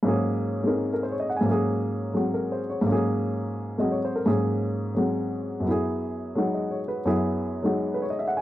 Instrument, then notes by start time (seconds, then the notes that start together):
grand piano
0.03 G#2 F#3 A#3 C#4
0.08 G#4
0.64 G#3 C4 D#4 A#4
0.94 A#4
1.03 C5
1.11 C#5
1.20 D#5
1.30 F#5
1.36 G#5
1.41 G#2 F#3
1.46 A#3 C#4
1.51 G#4
2.14 F#3 G#3 C4 F#4
2.34 A#4
2.52 C5
2.70 C#5
2.81 G#2 F#3
2.87 A#3 C#4
2.92 G#4
3.78 F#3 G#3 C4 F#4 D#5
3.92 C#5
4.05 C5
4.16 A#4
4.26 G#2 F#3 A#3 C#4 G#4
4.95 F#3 G#3 C4 F#4
5.60 F#2 F#3
5.66 B3 E4
5.71 G#4
6.35 F#3 G#3 D#4 F#4
6.54 D#5
6.71 C#5
6.88 B4
7.05 F#2 F#3 B3 E4 G#4
7.63 F#3 G#3 D#4 F#4
7.94 B4
8.02 C#5
8.10 D#5
8.19 E5
8.28 F#5
8.37 G#5